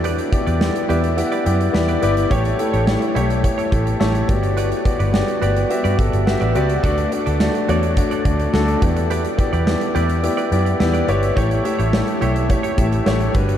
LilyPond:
<<
  \new Staff \with { instrumentName = "Clean electric guitar" } { \time 4/4 \key a \mixolydian \tempo 4 = 106 <g' b' d''>16 r8 <g' b' d''>16 r8 <g' b' d''>16 r8 <g' b' d''>16 r8. <g' b' d''>16 <g' b' d''>16 r16 | <e' g' cis''>16 r8 <e' g' cis''>16 r8 <e' g' cis''>16 r8 <e' g' cis''>16 r4. | <fis' b' d''>16 r8 <fis' b' d''>16 r8 <fis' b' d''>16 r8 <fis' b' d''>16 r8. <fis' b' d''>16 <fis' b' d''>16 r16 | <fis' a' d''>16 r8 <fis' a' d''>16 r8 <fis' a' d''>16 r8 <fis' a' d''>16 r4. |
<g' b' d''>16 r8 <g' b' d''>16 r8 <g' b' d''>16 r8 <g' b' d''>16 r8. <g' b' d''>16 <g' b' d''>16 r16 | <e' g' cis''>16 r8 <e' g' cis''>16 r8 <e' g' cis''>16 r8 <e' g' cis''>16 r4. | }
  \new Staff \with { instrumentName = "Grand piano" } { \time 4/4 \key a \mixolydian << { r4. e''8 fis''8 g''8 b''4 | r1 | r1 | r1 |
r1 | r1 | } \\ { <b e' g' d''>8 <b e' g' d''>8 <b e' g' d''>8 <b e' g' d''>8 <b e' g' d''>8 <b e' g' d''>8 <b e' g' d''>8 <b e' g' d''>8 | <a e' g' cis''>8 <a e' g' a'>8 <a e' g' cis''>8 <a e' g' cis''>8 <a e' g' cis''>8 <a e' g' a'>8 <a e' g' cis''>8 <b fis' g' d''>8~ | <b fis' g' d''>8 <b fis' g' d''>8 <b fis' g' d''>8 <b fis' g' d''>8 <b fis' g' e''>8 <b fis' g' a'>8 <b fis' g' e''>8 <b fis' g' d''>8 | <a d' fis' d''>8 <a d' fis' d''>8 <a d' fis' d''>8 <a d' fis' cis''>8 <a d' fis' d''>8 <a d' fis' d''>8 <a d' fis' a'>8 <b e' g' d''>8~ |
<b e' g' d''>8 <b e' g' d''>8 <b e' g' d''>8 <b e' g' d''>8 <b e' g' d''>8 <b e' g' d''>8 <b e' g' d''>8 <b e' g' cis''>8 | <a e' g' cis''>8 <a e' g' e''>8 <a e' g' cis''>8 <a e' g' e''>8 <a e' g' cis''>8 <a e' g' e''>8 <a e' g' cis''>8 <g d' fis' b'>8 | } >> }
  \new Staff \with { instrumentName = "Fingered electric bass" } { \clef bass \time 4/4 \key a \mixolydian e,8 r16 e,8 r16 e,8. r16 fis,8 e,8 g,,8 | a,,8 r16 a,,8 r16 b,,8. r16 a,,8 a,,8 g,,8~ | g,,8 r16 g,,8 r16 g,,8 r16 g,16 g,,16 g,,8 a,,16 cis,8 | d,8 r16 d,8 r16 e,8. r16 d,8 d,8 e,8~ |
e,8 r16 e,8 r16 e,8. r16 fis,8 e,8 g,,8 | a,,8 r16 a,,8 r16 b,,8. r16 a,,8 a,,8 g,,8 | }
  \new DrumStaff \with { instrumentName = "Drums" } \drummode { \time 4/4 hh16 hh16 <hh bd>16 hh16 sn16 hh16 hh16 hh16 hh16 hh16 hh16 hh16 sn16 hh16 hh16 hh16 | <hh bd>16 hh16 hh16 hh16 sn16 hh16 hh16 hh16 <hh bd>16 hh16 <hh bd>16 hh16 sn16 hh16 <hh bd>16 hh16 | hh16 hh16 <hh bd>16 hh16 sn16 hh16 hh16 hh16 hh16 hh16 <hh bd>16 hh16 sn16 hh16 hh16 hh16 | <hh bd>16 hh16 hh16 hh16 sn16 hh16 hh16 hh16 <hh bd>16 hh16 <hh bd>16 hh16 sn16 hh16 <hh bd>16 hh16 |
hh16 hh16 <hh bd>16 hh16 sn16 hh16 hh16 hh16 hh16 hh16 hh16 hh16 sn16 hh16 hh16 hh16 | <hh bd>16 hh16 hh16 hh16 sn16 hh16 hh16 hh16 <hh bd>16 hh16 <hh bd>16 hh16 sn16 hh16 <hh bd>16 hh16 | }
>>